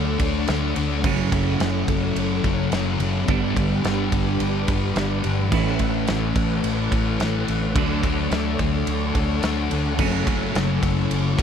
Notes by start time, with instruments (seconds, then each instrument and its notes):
Already playing: fingered electric bass D2, distorted electric guitar D3 A3 D4, overdriven electric guitar D3 F#3 A3 D4, string machine D4 A4 C#5 F#5
0.18 fingered electric bass D2, distorted electric guitar A3 D4, kick, ride
0.47 fingered electric bass D2, distorted electric guitar D3 A3 D4, snare, ride
0.75 fingered electric bass D2, distorted electric guitar A3 D4, ride
1.03 fingered electric bass F#1, distorted electric guitar F#2 C#3 F#3, overdriven electric guitar A3 C#4, string machine E4 C#5, kick, crash
1.31 fingered electric bass F#1, distorted electric guitar F#3, kick, ride
1.35 distorted electric guitar C#3
1.59 fingered electric bass F#1, distorted electric guitar F#2 C#3 F#3, snare, ride
1.88 fingered electric bass F#1, kick, ride
2.16 fingered electric bass F#1, ride
2.43 fingered electric bass F#1, distorted electric guitar C#3 F#3, kick, ride
2.71 fingered electric bass F#1, distorted electric guitar F#2 C#3 F#3, snare, ride
2.99 fingered electric bass F#1, distorted electric guitar C#3 F#3, ride
3.27 fingered electric bass G1, distorted electric guitar G2 D3 G3, overdriven electric guitar B3, string machine D4 G4 B4, kick, ride
3.31 overdriven electric guitar D4
3.55 fingered electric bass G1, distorted electric guitar D3 G3, kick, ride
3.83 fingered electric bass G1, distorted electric guitar G2 D3 G3, snare, ride
4.12 fingered electric bass G1, kick, ride
4.40 fingered electric bass G1, ride
4.67 fingered electric bass G1, distorted electric guitar D3 G3, kick, ride
4.95 fingered electric bass G1, distorted electric guitar G2 D3 G3, snare, ride
5.23 fingered electric bass G1, distorted electric guitar D3 G3, ride
5.51 fingered electric bass A1, distorted electric guitar A2 E3 A3, string machine C#4 A4 F#5, overdriven electric guitar C#4 E4, kick, crash
5.79 fingered electric bass A1, distorted electric guitar E3 A3, kick, ride
6.07 fingered electric bass A1, distorted electric guitar A2 E3 A3, snare, ride
6.36 fingered electric bass A1, kick, ride
6.64 fingered electric bass A1, ride
6.90 fingered electric bass A1, distorted electric guitar E3 A3, kick, ride
7.18 fingered electric bass A1, distorted electric guitar A2 E3 A3, snare, ride
7.46 fingered electric bass A1, distorted electric guitar E3 A3, ride
7.75 fingered electric bass D2, distorted electric guitar D3 A3 D4, overdriven electric guitar F#3, string machine D4 C#5, kick, ride
8.03 fingered electric bass D2, distorted electric guitar A3 D4, kick, ride
8.31 fingered electric bass D2, distorted electric guitar D3 A3 D4, snare, ride
8.59 fingered electric bass D2, kick, ride
8.87 fingered electric bass D2, ride
9.15 fingered electric bass D2, distorted electric guitar A3 D4, kick, ride
9.42 fingered electric bass D2, distorted electric guitar D3 A3 D4, snare, ride
9.70 fingered electric bass D2, distorted electric guitar A3 D4, ride
9.98 fingered electric bass F#1, distorted electric guitar F#2 C#3 F#3, overdriven electric guitar A3 C#4, string machine E4, kick, crash
10.25 fingered electric bass F#1, distorted electric guitar C#3 F#3, kick, ride
10.53 fingered electric bass F#1, distorted electric guitar F#2 C#3 F#3, snare, ride
10.83 fingered electric bass F#1, kick, ride
11.11 fingered electric bass F#1, ride
11.37 fingered electric bass F#1, distorted electric guitar F#3, kick, ride